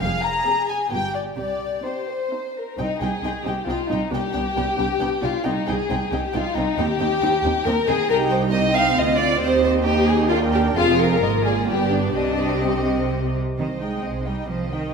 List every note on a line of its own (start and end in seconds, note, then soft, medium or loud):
0.01 0.37 F1 medium
0.01 0.37 F2 medium
0.01 0.89 G#4 medium
0.01 0.22 F5 medium
0.23 0.68 A#5 medium
0.46 0.79 C4 soft
0.46 0.79 G#4 medium
0.69 0.91 G#5 medium
0.91 1.28 G1 medium
0.91 1.27 G2 soft
0.91 1.25 B3 soft
0.91 1.25 F4 soft
0.91 1.37 G4 soft
0.91 1.14 G5 medium
1.15 1.23 D5 medium
1.37 1.75 C2 medium
1.37 1.75 C3 medium
1.37 1.79 G4 soft
1.37 1.83 D5 medium
1.84 2.20 C4 soft
1.84 2.20 D#4 soft
1.84 2.06 G4 soft
1.84 2.55 C5 soft
2.08 2.55 C5 soft
2.33 2.67 C4 soft
2.33 2.67 D#4 soft
2.56 2.78 A#4 soft
2.78 2.86 C2 medium
2.78 2.86 C4 soft
2.78 2.86 D#4 soft
2.78 2.99 D#4 medium
2.78 2.87 G5 soft
3.01 3.09 C2 soft
3.01 3.09 C2 medium
3.01 3.09 C4 soft
3.01 3.09 D#4 soft
3.01 3.44 G#4 medium
3.01 3.09 G5 soft
3.22 3.30 C2 soft
3.22 3.31 C2 soft
3.22 3.31 C4 soft
3.22 3.31 D#4 soft
3.22 3.32 G5 soft
3.45 3.53 C2 medium
3.45 3.53 C2 soft
3.45 3.53 C4 soft
3.45 3.53 D#4 soft
3.45 3.67 G4 medium
3.45 3.55 G5 soft
3.67 3.75 C2 medium
3.67 3.75 C4 soft
3.67 3.75 D#4 soft
3.67 3.89 F4 medium
3.67 3.78 G5 soft
3.89 3.98 C2 medium
3.89 3.98 C2 soft
3.89 3.97 C4 soft
3.89 3.97 D#4 soft
3.89 4.12 D#4 medium
3.89 4.00 G5 soft
4.11 4.20 C2 medium
4.11 4.21 C2 medium
4.11 4.19 B3 soft
4.11 4.19 D4 soft
4.11 5.21 G4 medium
4.11 4.22 G5 medium
4.34 4.42 C2 soft
4.34 4.43 C2 soft
4.34 4.42 B3 soft
4.34 4.42 D4 soft
4.34 4.42 G5 soft
4.56 4.64 C2 medium
4.56 4.65 C2 medium
4.56 4.64 B3 soft
4.56 4.64 D4 soft
4.56 4.65 G5 soft
4.77 4.87 C2 medium
4.77 4.87 C2 soft
4.77 4.85 B3 soft
4.77 4.85 D4 soft
4.77 4.87 G5 soft
5.00 5.09 C2 soft
5.00 5.09 C2 medium
5.00 5.08 B3 soft
5.00 5.08 D4 soft
5.00 5.09 G5 soft
5.22 5.31 C2 medium
5.22 5.32 C2 medium
5.22 5.30 B3 soft
5.22 5.30 D4 medium
5.22 5.45 F4 medium
5.22 5.31 G5 soft
5.44 5.54 C2 medium
5.44 5.52 C4 medium
5.44 5.52 D#4 medium
5.44 5.68 D#4 medium
5.44 5.52 G5 medium
5.67 5.76 C2 medium
5.67 5.75 C4 medium
5.67 5.75 D#4 soft
5.67 6.12 G#4 medium
5.67 5.75 G5 medium
5.89 5.98 C2 medium
5.89 5.98 C4 medium
5.89 5.97 D#4 soft
5.89 5.98 G5 medium
6.11 6.20 C2 soft
6.11 6.20 C2 medium
6.11 6.20 C4 soft
6.11 6.21 D#4 soft
6.11 6.33 G4 medium
6.11 6.20 G5 soft
6.33 6.42 C2 medium
6.33 6.42 C4 medium
6.33 6.42 D#4 medium
6.33 6.56 F4 medium
6.33 6.41 G5 medium
6.55 6.64 C2 medium
6.55 6.65 C4 medium
6.55 6.77 D#4 medium
6.55 6.65 D#4 soft
6.55 6.63 G5 soft
6.77 6.86 D#2 medium
6.77 6.87 C4 medium
6.77 6.87 D#4 medium
6.77 7.66 G4 medium
6.77 6.86 G5 medium
6.99 7.07 D#2 medium
6.99 7.08 D#2 medium
6.99 7.08 C4 medium
6.99 7.09 D#4 medium
6.99 7.07 G5 medium
7.21 7.29 D#2 medium
7.21 7.30 D#2 medium
7.21 7.30 C4 medium
7.21 7.30 D#4 medium
7.21 7.30 G5 medium
7.43 7.52 D#2 medium
7.43 7.52 C4 medium
7.43 7.52 D#4 soft
7.43 7.51 G5 soft
7.65 7.73 D#2 medium
7.65 7.74 D#2 medium
7.65 7.74 C4 medium
7.65 7.73 D#4 medium
7.65 7.87 A#4 medium
7.65 7.74 G5 medium
7.87 7.95 D#2 medium
7.87 7.96 D#2 medium
7.87 7.96 C4 medium
7.87 7.96 D#4 medium
7.87 8.09 G#4 medium
7.87 7.96 G5 medium
8.08 8.94 C2 medium
8.08 8.51 D#4 medium
8.08 8.51 G4 medium
8.08 8.16 A#4 loud
8.08 8.50 G5 medium
8.30 8.38 C5 medium
8.52 9.41 C4 medium
8.52 8.97 D#4 medium
8.52 8.74 D#5 loud
8.52 8.97 G5 medium
8.74 8.97 F5 medium
8.96 9.42 D2 medium
8.96 9.41 F4 medium
8.96 9.20 D#5 medium
8.96 9.41 F5 medium
9.18 9.41 D5 loud
9.40 10.74 D#2 medium
9.40 9.85 C4 medium
9.40 10.31 G4 medium
9.40 9.63 C5 loud
9.40 9.84 D#5 medium
9.64 9.72 C5 medium
9.85 10.31 D#4 medium
9.85 10.08 G4 medium
9.85 10.30 D#5 medium
10.08 10.31 G#4 medium
10.29 10.76 D4 medium
10.29 10.37 F4 medium
10.29 10.76 A#4 medium
10.29 10.77 G5 medium
10.54 10.62 G4 medium
10.76 11.21 F1 medium
10.76 11.21 F2 medium
10.76 11.21 C4 medium
10.76 10.99 F4 loud
10.76 11.22 G#4 medium
10.76 11.22 F5 medium
10.99 11.45 A#4 medium
11.21 11.68 G#1 medium
11.21 11.68 G#2 medium
11.21 11.67 A#3 medium
11.21 11.67 F4 medium
11.21 11.31 D#5 medium
11.44 11.68 G#4 medium
11.44 11.66 D5 medium
11.67 12.15 G1 medium
11.67 12.16 G2 medium
11.67 12.16 B3 medium
11.67 11.91 G4 medium
11.67 12.14 G4 medium
11.67 12.15 D5 medium
11.90 12.15 D4 medium
12.15 13.36 C2 medium
12.15 13.36 C3 medium
12.15 13.38 C4 medium
12.15 12.63 D4 medium
12.15 13.35 G4 medium
12.15 13.38 D#5 medium
12.64 13.35 C4 medium
13.58 13.99 C2 soft
13.58 13.67 D#3 medium
13.58 13.80 C4 soft
13.58 13.80 C5 soft
13.58 13.80 D#5 soft
13.81 14.27 G#3 medium
13.81 14.04 D#4 soft
13.81 14.05 D#5 soft
13.81 14.04 G5 soft
14.03 14.45 C2 soft
14.03 14.27 C4 soft
14.03 14.28 C5 soft
14.03 14.27 D#5 soft
14.26 14.50 G3 soft
14.26 14.49 D#4 soft
14.26 14.50 D#5 soft
14.26 14.50 G5 soft
14.49 14.90 C2 soft
14.49 14.73 F3 medium
14.49 14.71 C4 soft
14.49 14.71 C5 soft
14.49 14.71 D#5 soft
14.72 14.94 D#3 medium
14.72 14.94 D#4 soft
14.72 14.94 D#5 soft
14.72 14.94 G5 soft